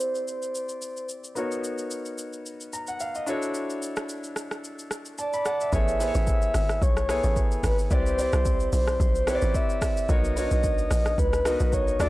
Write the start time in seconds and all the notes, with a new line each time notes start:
Already playing: C4 E4 G4 C5 D5
0.00 shaker
0.15 shaker
0.28 shaker
0.42 shaker
0.55 shaker
0.69 shaker
0.82 shaker
0.97 shaker
1.09 shaker
1.24 shaker
1.35 B3 D#4 F#4 A#4 C#5, shaker
1.52 shaker
1.64 shaker
1.78 shaker
1.91 shaker
2.05 shaker
2.18 shaker
2.33 shaker
2.46 shaker
2.61 shaker
2.73 A#5, shaker
2.87 F#5, shaker
3.00 F5, shaker
3.15 D#5, shaker
3.26 D4 E4 F#4 A4 C#5, shaker
3.42 shaker
3.54 shaker
3.70 shaker
3.82 shaker
3.97 cross-stick, shaker
4.09 shaker
4.24 shaker
4.36 cross-stick, shaker
4.51 cross-stick, shaker
4.64 shaker
4.79 shaker
4.91 cross-stick, shaker
5.05 shaker
5.18 D5 A5, shaker
5.33 B5, shaker
5.45 F#5 A5, cross-stick, shaker
5.61 E5, shaker
5.72 A1 B3 E4 G#4 A4 C#5 E5, kick, shaker
5.88 shaker
6.00 B3 E4 G#4 A4 C5, open hi-hat, shaker
6.08 C#5
6.15 A1, shaker
6.27 kick, shaker
6.42 shaker
6.54 G#1, cross-stick, open hi-hat, shaker
6.69 cross-stick, shaker
6.82 B1 C#5, kick, shaker
6.97 cross-stick, shaker
7.09 B3 E4 G#4 A4 C#5, cross-stick, open hi-hat, shaker
7.24 A1, shaker
7.36 kick, shaker
7.51 shaker
7.63 G#1 B4, kick, cross-stick, open hi-hat, shaker
7.79 shaker
7.91 C2 C4 E4 G4 B4 C5 D5, kick, shaker
8.06 shaker
8.18 C4 E4 G4 C5 D5, open hi-hat, shaker
8.33 C2, cross-stick, shaker
8.45 kick, shaker
8.60 shaker
8.73 B1 C5, open hi-hat, shaker
8.88 cross-stick, shaker
9.00 B1, kick, shaker
9.15 shaker
9.27 C4 E4 G4 B4 C#5, cross-stick, open hi-hat, shaker
9.35 D5
9.42 A1, shaker
9.55 E5, kick, shaker
9.70 shaker
9.82 kick, cross-stick, open hi-hat, shaker
9.97 shaker
10.09 B1 B3 D#4 F#4 A#4 C#5 D#5, kick, shaker
10.24 shaker
10.36 B3 D4 F#4 A#4 C#5, open hi-hat, shaker
10.43 D#4
10.51 B1, shaker
10.64 kick, shaker
10.78 shaker
10.91 A#1, cross-stick, open hi-hat, shaker
11.06 cross-stick, shaker
11.18 C#2 B4, kick, shaker
11.33 cross-stick, shaker
11.45 B3 D#4 F#4 A#4 D#5, cross-stick, open hi-hat, shaker
11.60 B1, shaker
11.73 C#5, kick, shaker
11.88 shaker
12.00 D2 D4 E4 F#4 A4 D5, kick, cross-stick, open hi-hat, shaker